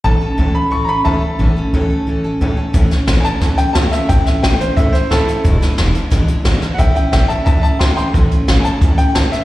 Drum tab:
HH |--------|--------|xxxxxxxx|xxxxxxxx|
SD |--------|--------|-oo-o-oo|-oo--oo-|
BD |--------|--------|o---o-o-|o---o-o-|

HH |xxxxxxxx|xxxxxxxx|xxxxxxxx|
SD |-oo-o-oo|--o---o-|--o---oo|
BD |o---o-o-|o---o-o-|o---o-o-|